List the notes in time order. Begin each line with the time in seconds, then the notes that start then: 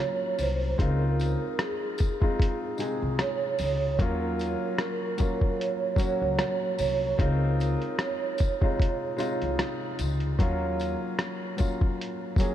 Already playing: F#3 A#3 C#4 F4 C#5
0.35 C#5, open hi-hat, tambourine
0.39 C2 C5
0.78 C#2 G#3 C4 D#4 F4 A#4, kick, closed hi-hat
1.19 closed hi-hat, tambourine
1.59 G#4, cross-stick, closed hi-hat
1.98 kick, closed hi-hat, tambourine
2.20 G#3 C4 D#4 F4, kick
2.39 kick, closed hi-hat
2.78 C3 G#3 D#4 G#4, closed hi-hat, tambourine
3.02 C2
3.19 C#5, cross-stick, closed hi-hat
3.59 C#2, open hi-hat, tambourine
3.99 D#2 F#3 A#3 C#4 F4 A#4, kick, closed hi-hat
4.39 closed hi-hat, tambourine
4.78 A#4, cross-stick, closed hi-hat
5.18 F#3 A#3 C#4 F4, kick, closed hi-hat, tambourine
5.42 kick
5.60 C#5, closed hi-hat
5.96 F#3 A#3 C#4 F#4, kick, closed hi-hat, tambourine
6.22 C#2
6.39 cross-stick, closed hi-hat
6.79 C2 C#5, open hi-hat, tambourine
7.18 C#2 G#3 C4 D#4 F4 A#4, kick, closed hi-hat
7.60 closed hi-hat, tambourine
7.82 closed hi-hat
7.99 C#5, cross-stick, closed hi-hat
8.38 kick, closed hi-hat, tambourine
8.61 C3 G#3 D#4 F4, kick
8.79 kick, closed hi-hat
9.16 C3 G#3 D#4 F4, closed hi-hat, tambourine
9.41 C2, closed hi-hat
9.59 cross-stick, closed hi-hat
9.99 C#2, closed hi-hat, tambourine
10.20 closed hi-hat
10.39 D#2 F#3 A#3 C#4 F4, kick, closed hi-hat
10.80 closed hi-hat, tambourine
11.19 cross-stick, closed hi-hat
11.57 F#3 A#3 C#4 F4, kick, closed hi-hat, tambourine
11.81 kick
12.02 closed hi-hat
12.37 F#3 A#3 C#4, kick, closed hi-hat, tambourine
12.41 G#4